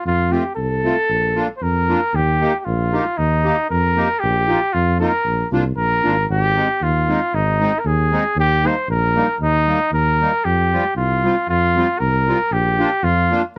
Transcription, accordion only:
0.31 A3 C4 F4
0.85 A3 C4 F4
1.36 A#3 D4 F4
1.89 A#3 D4 F4
2.41 A#3 D#4 G4
2.93 A#3 D#4 G4
3.44 A#3 D#4 G4
3.97 A#3 D#4 G4
4.48 A#3 D#4 F4
5.00 A#3 D#4 F4
5.52 A#3 D4 F4
6.03 A#3 D4 F4
6.55 G#3 C4 D#4
7.09 G#3 C4 D#4
7.60 G#3 C4 D#4
8.12 G#3 C4 D#4
8.64 G3 A#3 D#4
9.16 G3 A#3 D#4
9.67 G3 A#3 D#4
10.21 G3 A#3 D#4
10.73 G3 C4 F4
11.24 G3 C4 F4
11.76 G3 C4 F4
12.28 G3 C4 F4
12.79 A#3 D4 F4
13.31 A#3 D4 F4

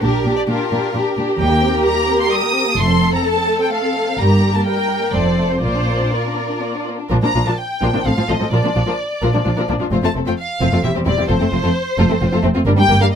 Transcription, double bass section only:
0.01 A#1
1.39 D#2
2.77 F1
4.18 G1
5.13 F1
5.62 A#1
7.10 A#1
7.34 A#1
7.82 A#1
8.05 A1
8.29 A1
8.52 A#1
8.76 A#1
9.22 A#1
9.46 A#1
9.69 A#1
9.92 F1
10.15 F1
10.61 F1
10.84 E1
11.07 E1
11.30 F1
11.53 F1
11.98 F1
12.21 F1
12.44 F1
12.66 G1
12.89 G1

